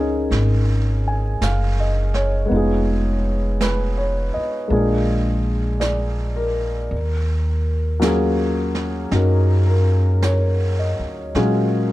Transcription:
Already playing: upright bass C#2, grand piano G#3 C#4 D#4 F4 G#4 A#4
0.31 upright bass G#1, brush sweep, snare
1.08 grand piano G#5
1.41 upright bass F#1, grand piano F5, brush sweep, snare, hi-hat pedal
1.80 grand piano D#5
2.14 grand piano C#5, snare
2.46 grand piano G#3 B3
2.50 upright bass F1, grand piano D#4 F4, brush sweep
2.57 grand piano G#4
3.61 grand piano B4, brush sweep, snare, hi-hat pedal
3.98 grand piano C#5
4.34 grand piano D#5, muted upright bass stroke
4.68 upright bass A#1, grand piano G#3 A#3 D4, brush sweep
4.72 grand piano F4 G#4
5.80 grand piano D5, brush sweep, snare, hi-hat pedal
6.36 grand piano A#4
6.91 upright bass D#2, brush sweep
8.00 grand piano F#3 A#3 C#4 F4, brush sweep, snare, hi-hat pedal
8.04 grand piano G#4
8.75 snare
9.11 upright bass F#2, grand piano C#4 D#4 F#4 A#4, brush sweep, snare
9.67 grand piano A#4
10.22 grand piano C#5, brush sweep, snare, hi-hat pedal
10.79 grand piano D#5
10.99 upright bass D2
11.35 upright bass A#2, grand piano F#3 G#3 C#4 F4 G#4, brush sweep, snare

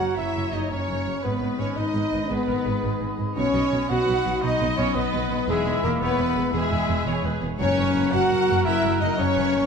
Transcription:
Already playing: harp F#2 A#3 C#4 F#4, french horn section F#4, trumpet F#4, oboe C#5, violin section F#5, clarinet F#5, flute A#5
0.00 harp C#3, viola section A#4
0.15 double bass section F#1, cello section F#2, harp A#3, french horn section E4, trumpet E4, viola section C#5, violin section E5, clarinet E5
0.35 double bass section F#1, cello section F#2, harp C#3
0.51 double bass section F#1, cello section F#2, harp A#3, french horn section D#4, trumpet D#4, violin section D#5, clarinet D#5
0.69 double bass section F#1, cello section F#2, french horn section C#4, trumpet C#4, harp F#4, violin section C#5, clarinet C#5
0.88 double bass section F#1, cello section F#2, harp A#3
1.06 double bass section F#1, cello section F#2, harp C#3
1.21 double bass section G#1, harp G#2, cello section G#2, french horn section B3, trumpet B3, viola section B4, clarinet B4, violin section B4, oboe D#5, flute B5
1.41 double bass section G#1, cello section G#2, harp G#3
1.59 double bass section G#1, cello section G#2, harp B3, french horn section C#4, trumpet C#4, violin section C#5, clarinet C#5
1.76 double bass section G#1, cello section G#2, french horn section D#4, harp D#4, trumpet D#4, clarinet D#5, violin section D#5
1.94 double bass section G#1, cello section G#2, harp B3
2.12 double bass section G#1, cello section G#2, harp G#3
2.29 double bass section G#1, cello section G#2, harp D#3, french horn section B3, trumpet B3, viola section G#4, violin section B4, clarinet B4
2.48 double bass section G#1, cello section G#2, harp G#3, viola section A#4
2.65 double bass section G#1, cello section G#2, harp B3, viola section G#4
2.83 double bass section G#1, cello section G#2, harp D#4
3.00 double bass section G#1, cello section G#2, harp B3
3.19 double bass section G#1, cello section G#2, harp G#3
3.36 double bass section B1, harp B2, cello section B2, french horn section C#4, trumpet C#4, viola section F#4, violin section C#5, clarinet C#5
3.53 double bass section B1, cello section B2, harp B3, viola section D#5
3.72 double bass section B1, cello section B2, viola section C#5
3.89 double bass section B1, cello section B2, harp F#4, trumpet F#4, french horn section F#4, viola section B4, clarinet F#5, violin section F#5
4.07 double bass section B1, cello section B2, harp D#4
4.24 double bass section B1, cello section B2, harp B3
4.41 double bass section B1, cello section B2, harp F#3, trumpet D#4, french horn section D#4, violin section D#5, clarinet D#5, viola section D#5
4.59 double bass section B1, cello section B2, harp B3
4.77 double bass section B1, cello section B2, trumpet C#4, french horn section C#4, harp D#4, violin section C#5, clarinet C#5
4.95 double bass section B1, cello section B2, trumpet B3, french horn section B3, harp F#4, clarinet B4, violin section B4
5.13 double bass section B1, cello section B2, harp D#4
5.30 double bass section B1, cello section B2
5.47 double bass section E1, cello section E2, harp E2, trumpet G#3, french horn section G#3, violin section G#4, clarinet G#4, oboe E5, viola section E5, flute B5
5.65 double bass section E1, cello section E2, harp G#3
5.83 double bass section E1, cello section E2, trumpet A#3, french horn section A#3, harp B3, violin section A#4, clarinet A#4
6.01 double bass section E1, cello section E2, trumpet B3, french horn section B3, harp G#4, violin section B4, clarinet B4, viola section C#5
6.18 double bass section E1, cello section E2, viola section B4
6.36 double bass section E1, cello section E2, harp G#3, viola section G#4
6.53 double bass section E1, cello section E2, harp B2, french horn section G#3, trumpet G#3, violin section G#4, clarinet G#4, viola section E5
6.71 double bass section E1, cello section E2, harp G#3
6.89 double bass section E1, cello section E2, harp B3
7.06 double bass section E1, cello section E2, harp G#4, viola section C#5
7.24 double bass section E1, cello section E2, harp B3, viola section B4
7.41 double bass section E1, cello section E2, harp G#3, viola section G#4
7.58 double bass section F#1, harp F#2, cello section F#2, timpani F#2, trumpet C#4, french horn section C#4, viola section A#4, violin section C#5, clarinet C#5, oboe F#5, flute A#5
7.77 double bass section F#1, cello section F#2, harp F#3, viola section C#5
7.94 double bass section F#1, cello section F#2, harp A#3, viola section B4
8.12 double bass section F#1, cello section F#2, trumpet F#4, french horn section F#4, viola section A#4, harp A#4, violin section F#5, clarinet F#5
8.30 double bass section F#1, cello section F#2, harp A#3
8.47 double bass section F#1, cello section F#2, harp F#3
8.65 double bass section F#1, cello section F#2, harp C#3, trumpet E4, french horn section E4, violin section E5, clarinet E5
8.83 double bass section F#1, cello section F#2, harp F#3
9.00 double bass section F#1, cello section F#2, harp A#3, trumpet D#4, french horn section D#4, violin section D#5, clarinet D#5
9.17 double bass section F#1, cello section F#2, trumpet C#4, french horn section C#4, harp A#4, violin section C#5, viola section C#5, clarinet C#5
9.35 double bass section F#1, cello section F#2, harp A#3, viola section B4
9.53 double bass section F#1, cello section F#2, harp F#3, viola section A#4

